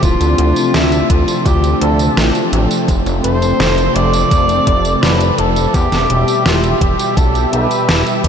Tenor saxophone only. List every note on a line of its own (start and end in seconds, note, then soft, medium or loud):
0.03 0.76 F4 loud
0.75 1.12 E4 medium
1.10 1.48 F4 medium
1.46 1.81 G4 loud
1.82 2.49 A4 medium
3.24 3.97 C5 loud
3.95 5.04 D5 loud
5.02 5.40 B4 loud
5.38 5.76 A4 loud
5.74 6.45 G4 loud
6.46 6.83 F4 medium
6.81 7.19 G4 medium
7.17 7.52 A4 loud
7.53 8.20 B4 loud